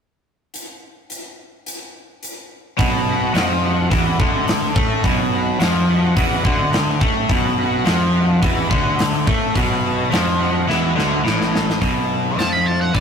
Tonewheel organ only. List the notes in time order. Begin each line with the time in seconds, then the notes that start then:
2.79 F#4 B4 D#5 F#5
3.09 F#4 B4 D#5 F#5
3.65 F#4 B4 D#5 F#5
5.05 F#4 B4 D#5 G#5
5.34 F#4 B4 D#5 F#5
5.89 F#4 B4 D#5 F#5
7.29 F#4 B4 D#5 F#5
7.59 F#4 B4 D#5 F#5
8.16 F#4 B4 D#5 F#5
9.56 F#4 B4 D#5 F#5
9.85 F#4 B4 D#5 A5
10.39 F#4 B4 D#5 F#5